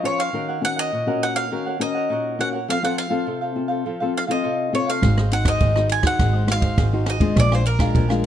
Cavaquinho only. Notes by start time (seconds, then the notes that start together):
0.05 F4 A#4 C#5 F5
0.19 A#4 C#5 F5
0.35 D#4 A#4 C#5 F#5
0.48 A#4 C#5 F#5
0.63 muted cavaquinho stroke
0.76 A#4 C#5 F#5
0.92 D#4 A#4 C#5 F#5
1.08 A#4 C#5 F#5
1.35 A#4 C#5 F#5
1.51 D#4 A#4 C#5 F#5
1.66 A#4 C#5 F#5
1.81 muted cavaquinho stroke
1.94 A#4 C#5 F#5
2.10 D#4 A#4 C#5 F#5
2.39 D#4 A#4 C#5 F#5
2.53 A#4 C#5 F#5
2.69 F4 A4 C5 F5
2.83 A4 C5 F5
2.98 muted cavaquinho stroke
3.10 A4 C5 F5
3.26 F4 A4 C5 F5
3.41 A4 C5 F5
3.68 A4 C5 F5
3.85 F4 A4 C5 F5
4.00 A4 C5 F5
4.14 muted cavaquinho stroke
4.27 A4 C5 F5
4.42 F4 A4 C5 F5
4.73 F4 A4 C5 F5
4.86 A4 C5 F5
5.02 F#4 G#4 C5 D#5
5.18 G#4 C5 D#5
5.31 muted cavaquinho stroke
5.45 G#4 C5 D#5
5.61 F#4 G#4 C5 D#5
5.75 G#4 C5 D#5
6.03 G#4 C5 D#5
6.19 F#4 G#4 C5 D#5
6.33 G#4 C5 D#5
6.48 muted cavaquinho stroke
6.61 G#4 C5 D#5
6.77 F#4 G#4 C5 D#5
7.05 F#4 G#4 C5 D#5
7.20 G#4 C5 D#5
7.36 D4 A#4 F5 G#5
7.52 A#4 F5 G#5
7.66 muted cavaquinho stroke
7.80 A#4 F5 G#5
7.93 D4 A#4 F5 G#5
8.09 A#4 F5 G#5